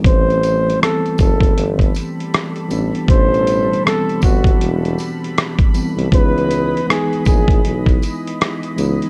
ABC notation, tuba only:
X:1
M:4/4
L:1/16
Q:"Swing 16ths" 1/4=79
K:Am
V:1 name="Tuba" clef=bass
A,,,4 z2 ^F,,,2 G,,,2 z4 A,,, z | A,,,4 z2 G,,,2 E,,,2 z4 z C,, | ^C,,4 z2 _B,,,2 =B,,,2 z4 C,, z |]